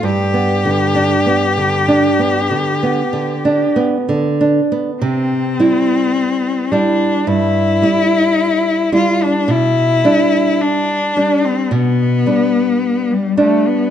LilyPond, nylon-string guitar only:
\new Staff \with { instrumentName = "Nylon-string guitar" } { \time 4/4 \key c \major \tempo 4 = 53 g,16 b16 d16 d'16 b16 d16 d'16 b16 d16 b16 d16 d'16 b16 d16 d'16 b16 | c8 <g e'>4 <g e'>8 g,8 <g e'>4 <g e'>8 | b,8 <g d'>4 <g d'>8 b,8 <g d'>4 <g d'>8 | }